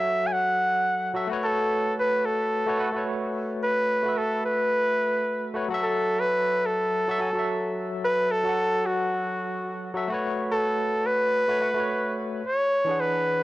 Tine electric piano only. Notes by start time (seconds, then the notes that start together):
Already playing: F#3 F#4 A4 F#5
1.14 F#3 F#4 A4 E5
1.27 A3 F#4
1.31 B4 C#5
2.66 A3 F#4 B4 C#5
2.78 A3 F#4 B4 F#5
2.92 A3 F#4 B4
2.98 C#5
4.03 A3 F#4 B4
4.09 E5
5.54 A3 F#4 B4 C#5
5.68 F#3 F#4 A4
5.74 E5
7.08 F#3 F#4 A4 E5
7.19 F#3 F#4 A4 G#5
7.33 F#3 F#4 A4
7.39 E5
8.43 F#3 F#4 A4
8.49 F#5
9.94 F#3 F#4 A4 E5
10.08 A3 F#4
10.12 B4 C#5
11.48 A3 F#4 B4 C#5
11.60 A3 F#4 B4 F#5
11.74 A3 F#4 B4
11.80 C#5
12.85 E3 D4
12.89 G#4 F#5